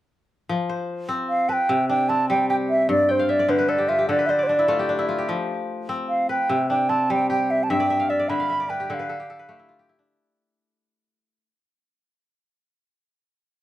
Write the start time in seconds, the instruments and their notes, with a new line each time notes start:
0.49 kora F3
0.69 kora C5
1.09 kora C4
1.29 flute F5
1.49 kora B4, flute A5
1.53 flute G5
1.69 kora C3
1.89 kora D4, flute G5
2.09 kora C4, flute A5
2.29 kora G3, flute G5
2.50 kora G4, flute G5
2.70 flute E5
2.89 kora G2, flute D5
3.09 flute C5, kora G5
3.19 kora F5
3.29 flute D5, kora E5
3.39 kora D5
3.49 kora D3 C5, flute B4
3.59 kora B4
3.68 kora A4, flute D5
3.78 kora G4
3.89 kora F4, flute E5
3.99 kora G4
4.09 kora D3 A4, flute D5
4.19 kora B4
4.26 kora C5, flute D5 E5
4.39 kora D5
4.43 flute C5 D5
4.49 kora D4
4.59 kora E4
4.68 kora A3 F4
4.79 kora G4
4.89 kora D4
4.99 kora E4
5.09 kora F4
5.18 kora G4
5.29 kora F3
5.89 kora C4
6.09 flute F5
6.29 kora B4, flute G5
6.49 kora C3
6.70 kora D4, flute G5
6.89 kora C4, flute A5
7.10 kora G3, flute G5
7.30 kora G4, flute G5
7.51 flute E5
7.63 flute A5
7.70 kora G2 E5, flute G5
7.80 kora D5
7.90 kora E5
8.00 kora F5
8.10 flute D5, kora E5
8.19 kora D5
8.29 kora D3 E5, flute B5
8.40 kora F5
8.49 kora E5
8.60 kora D5
8.70 kora B4, flute G5
8.80 kora G4
8.90 kora D3 A4, flute G5
8.94 flute F5
8.99 kora B4
9.09 kora A4
9.20 kora G4
9.30 kora A4
9.39 kora B4
9.49 kora A3 G4
9.59 kora E4
9.69 kora F4
9.79 kora G4
9.89 kora E4
9.99 kora D4